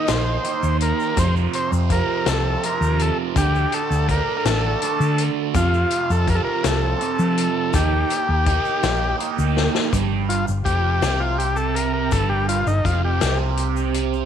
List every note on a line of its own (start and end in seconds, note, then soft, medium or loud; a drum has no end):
0.00 0.12 D#4 medium
0.06 0.36 A#1 medium
0.06 0.42 D#3 medium
0.06 0.44 A#3 medium
0.06 0.45 D#4 medium
0.06 0.77 C5 medium
0.06 snare loud
0.06 closed hi-hat medium
0.06 shaker medium
0.43 1.14 D#3 medium
0.43 1.15 A#3 medium
0.43 1.16 D#4 medium
0.43 closed hi-hat medium
0.63 0.91 D#2 medium
0.63 shaker medium
0.81 1.19 A#4 medium
0.81 closed hi-hat medium
0.81 shaker soft
1.00 shaker soft
1.15 1.88 F2 medium
1.15 1.46 F2 medium
1.15 1.90 C3 medium
1.15 1.92 F3 loud
1.15 1.35 C5 loud
1.15 kick loud
1.15 closed hi-hat medium
1.15 shaker medium
1.36 shaker soft
1.53 1.71 C5 medium
1.53 closed hi-hat medium
1.72 2.00 F2 medium
1.72 shaker medium
1.90 2.28 F2 medium
1.90 2.26 C3 medium
1.90 2.25 F3 medium
1.90 2.28 A#4 medium
1.90 kick medium
1.90 closed hi-hat medium
2.26 2.55 C2 medium
2.26 2.61 F2 medium
2.26 2.63 C3 medium
2.26 2.65 F3 medium
2.26 2.65 A4 medium
2.26 snare loud
2.26 closed hi-hat medium
2.26 shaker medium
2.62 3.33 F2 medium
2.62 3.34 C3 medium
2.62 3.37 F3 medium
2.62 3.02 A#4 medium
2.62 closed hi-hat medium
2.81 3.09 D#2 medium
2.81 shaker medium
2.99 3.18 A4 medium
2.99 closed hi-hat medium
3.36 3.64 D2 medium
3.36 4.07 D3 medium
3.36 4.10 A3 medium
3.36 4.10 D4 loud
3.36 3.74 G4 medium
3.36 kick loud
3.36 closed hi-hat loud
3.36 shaker loud
3.55 shaker soft
3.72 4.07 A4 medium
3.72 closed hi-hat medium
3.91 4.19 D2 medium
3.91 shaker medium
4.08 4.47 D3 medium
4.08 4.46 A3 medium
4.08 4.44 D4 medium
4.08 4.36 A#4 medium
4.08 kick medium
4.08 closed hi-hat medium
4.37 4.45 A#4 medium
4.45 4.74 A1 medium
4.45 4.81 D3 medium
4.45 4.82 A3 medium
4.45 4.84 D4 medium
4.45 5.24 A4 medium
4.45 snare loud
4.45 closed hi-hat medium
4.45 shaker medium
4.82 5.53 D3 medium
4.82 5.53 A3 medium
4.82 5.54 D4 medium
4.82 closed hi-hat medium
5.00 5.28 D3 medium
5.00 shaker medium
5.18 closed hi-hat medium
5.54 6.26 F2 medium
5.54 5.83 F2 medium
5.54 6.27 C3 medium
5.54 6.29 F3 medium
5.54 6.12 F4 medium
5.54 kick loud
5.54 closed hi-hat medium
5.54 shaker medium
5.74 shaker soft
5.90 closed hi-hat medium
6.10 6.38 F2 medium
6.10 6.29 A4 medium
6.10 shaker medium
6.27 6.65 F2 medium
6.27 6.64 C3 medium
6.27 6.62 F3 medium
6.27 6.36 A#4 medium
6.27 kick medium
6.27 closed hi-hat medium
6.35 6.42 A4 medium
6.44 6.66 A#4 medium
6.63 6.93 C2 medium
6.63 6.99 F2 medium
6.63 7.01 C3 medium
6.63 7.02 F3 medium
6.63 snare loud
6.63 closed hi-hat loud
6.63 shaker medium
6.67 7.79 A4 medium
7.00 7.71 F2 medium
7.00 7.72 C3 medium
7.00 7.73 F3 medium
7.00 closed hi-hat medium
7.19 7.48 F3 medium
7.19 shaker medium
7.38 closed hi-hat medium
7.73 8.02 D#2 medium
7.73 8.44 D#3 medium
7.73 8.46 A#3 medium
7.73 8.48 D#4 medium
7.73 9.17 G4 medium
7.73 kick loud
7.73 closed hi-hat loud
7.73 shaker loud
8.10 closed hi-hat medium
8.10 shaker soft
8.29 8.57 D#2 medium
8.46 8.84 D#3 medium
8.46 8.83 A#3 medium
8.46 8.81 D#4 medium
8.46 kick medium
8.46 closed hi-hat medium
8.65 shaker soft
8.82 9.12 A#1 medium
8.82 9.17 D#3 medium
8.82 9.18 A#3 medium
8.82 9.20 D#4 medium
8.82 snare loud
8.82 closed hi-hat medium
8.82 shaker medium
9.18 9.90 D#3 medium
9.18 9.91 A#3 medium
9.18 9.92 D#4 medium
9.18 closed hi-hat medium
9.39 9.67 D2 medium
9.39 shaker medium
9.57 snare medium
9.75 snare medium
9.75 shaker soft
9.92 10.44 G1 medium
9.92 10.46 G2 medium
9.92 kick loud
9.92 closed hi-hat medium
9.92 shaker loud
10.29 10.46 F4 medium
10.29 closed hi-hat medium
10.47 10.65 G1 medium
10.47 10.64 G2 medium
10.47 shaker medium
10.64 11.00 F1 medium
10.64 11.01 F2 medium
10.64 11.22 G4 medium
10.64 kick medium
10.64 closed hi-hat medium
10.64 shaker soft
11.01 12.08 C2 medium
11.01 12.10 C3 medium
11.01 snare loud
11.01 closed hi-hat medium
11.01 shaker medium
11.20 11.37 F4 medium
11.38 11.57 G4 medium
11.38 closed hi-hat medium
11.56 11.76 A4 medium
11.56 shaker medium
11.75 11.92 A#4 medium
11.75 closed hi-hat medium
11.94 12.13 A#4 medium
12.11 12.63 G1 medium
12.11 12.66 G2 medium
12.11 12.29 A4 medium
12.11 kick loud
12.11 closed hi-hat medium
12.11 shaker medium
12.29 12.47 G4 medium
12.49 12.67 F4 medium
12.49 closed hi-hat medium
12.66 12.84 G1 medium
12.66 12.84 G2 medium
12.66 12.86 D#4 medium
12.66 shaker medium
12.84 13.19 F1 medium
12.84 13.20 F2 medium
12.84 13.02 F4 medium
12.84 kick medium
12.84 closed hi-hat medium
12.84 shaker soft
13.05 13.38 G4 medium
13.21 14.25 C2 loud
13.21 14.25 C3 loud
13.21 snare loud
13.21 closed hi-hat loud
13.21 shaker medium
13.57 closed hi-hat medium
13.77 shaker medium
13.94 closed hi-hat medium
14.13 shaker soft